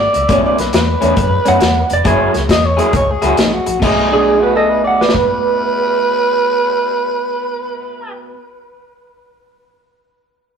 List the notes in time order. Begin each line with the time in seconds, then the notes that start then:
Already playing: D5
0.13 C#2, muted clean electric guitar stroke, closed hi-hat
0.29 B1 B2 D#3 A3 C#4, kick, closed hi-hat
0.45 D5
0.58 B1 B4, muted clean electric guitar stroke, snare, closed hi-hat
0.73 E2 B4, muted clean electric guitar stroke, snare, closed hi-hat
1.01 E2 B2 D#3 A3 C#4, closed hi-hat
1.16 F#2, muted clean electric guitar stroke, kick, closed hi-hat
1.45 F#2 B2 D#3 A3 C#4 F#5, closed hi-hat
1.60 E2, muted clean electric guitar stroke, snare, closed hi-hat
1.90 F1 D5, muted clean electric guitar stroke, closed hi-hat
2.04 F#1 F#3 A#3 E4 G#4 C#5, kick, closed hi-hat
2.33 C#2, muted clean electric guitar stroke, snare, closed hi-hat
2.49 E2 D#5, muted clean electric guitar stroke, kick, snare, closed hi-hat
2.66 C#5
2.77 F#3 A#3 E4 G#4, closed hi-hat
2.93 C#2 C#5, muted clean electric guitar stroke, kick, closed hi-hat
3.11 G#4
3.22 C#2 F#3 A#3 E4 F#4 G#4, closed hi-hat
3.37 A#1 D#4, muted clean electric guitar stroke, snare, closed hi-hat
3.53 F#4
3.66 A#1, muted clean electric guitar stroke, closed hi-hat
3.80 B1 B2 A3 D#4, kick, crash
3.84 G#4
4.12 D4 G#4
4.41 F#4 B4
4.56 A4 D#5
4.70 B4
4.84 D5 F#5
5.01 B4, snare
5.09 snare
5.14 B4, kick